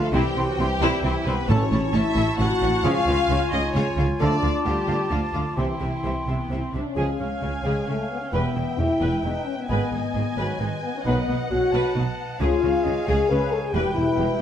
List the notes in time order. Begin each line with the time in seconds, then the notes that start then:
Already playing: F3 A3 F4 F5
0.02 A3 A4
0.13 C2 C3 E3 G3 C4 E4 G4 G5 C6
0.36 C2 C3 C4 E4 G5 C6
0.48 F#3 F#4
0.58 C2 C3 G3 C4 E4 G4 G5 C6
0.81 C2 C3 C4 E4 G5 C6
1.03 C2 C3 E3 C4 E4 G5 C6
1.25 C2 C3 G3 B3 C4 E4 B4 G5 C6
1.48 A1 A2 E3 C#4 E4 A4 C#5 A5 C#6
1.70 A1 A2 C#4 E4 A5
1.92 A1 A2 C#4 E4 E5 A5
2.15 A1 A2 C#4 E4 A5
2.39 A1 A2 C#4 E4 F#4 F#5 A5
2.61 A1 A2 C#4 E4 A5
2.83 C#2 C#3 F3 C#4 F4 G#4 F5 G#5
3.07 C#2 C#3 C#4 F4 F5
3.29 C#2 C#3 C#4 F4 F5
3.51 C#2 C#3 C#4 D#4 F4 D#5 F5
3.73 C#2 C#3 C#4 F4 C#5 F5
3.97 C#2 C#3 C#4 F4 F5
4.19 D2 D3 F3 A3 D4 F4 A4 D5 F5 A5 D6
4.42 D2 D3 A3 F4 F5
4.65 D2 D3 G3 A3 F4 G4 F5
4.87 D2 D3 A3 F4 F5
5.10 D2 D3 F3 A3 F4 F5
5.34 D2 D3 A3 F4 F5
5.57 C2 C3 E3 C4 E4 G4 E5 G5 C6
5.80 C2 C3 C4 G4 E5
6.03 C2 C3 C4 E5
6.27 C2 C3 B3 E5
6.51 C2 C3 C4 E4 E5
6.74 C2 C3 D4 E5
6.86 C#4
6.96 C#2 C#3 F3 G#3 G#4 F5 G#5
7.19 C#2 C#3 C#4 F5
7.41 C#2 C#3 F4 C#5
7.64 C#2 C#3 G#3 G#4
7.86 C#2 C#3 A3 C#4
7.90 F5
8.09 B3
8.21 C#4
8.32 E1 E2 E3 G3 B3 B4 E5 G5
8.56 E1 E2 E4 G5
8.79 E1 E2 E4 G4
9.01 E1 E2 B4
9.24 E1 E2 D#4 E4 B4
9.45 C#4
9.57 B3
9.68 G#1 G#2 D#3 G#3 B4 D#5 G#5
9.92 G#1 G#2 D#4 G#5
10.13 G#1 G#2 G#4 D#5
10.37 G#1 G#2 F#3 B4 C#5
10.60 G#1 G#2 G#3 D#4 B4
10.83 B3
10.94 C#4
11.04 B1 B2 D#3 F#3 B3 B4 D#5 F#5
11.29 B1 B2 D#4 D#5
11.50 B1 B2 F#4 C#5 F#5
11.72 B1 B2 B4 A5
11.95 B1 B2 D#4 B4
12.40 C#2 C#3 G#3 F4 G#4 C#5 F5 G#5
12.61 C#2 C#3 C#4 F5
12.83 C#2 C#3 F4 D#5
13.06 C#2 C#3 G#4
13.29 C#2 C#3 C#4 B4 C#5 G#5
13.50 A4
13.62 G#4
13.72 E1 E2 B2 G3 G4 B4 G5
13.94 E2 E4
13.98 E1
14.18 E1 E2 G4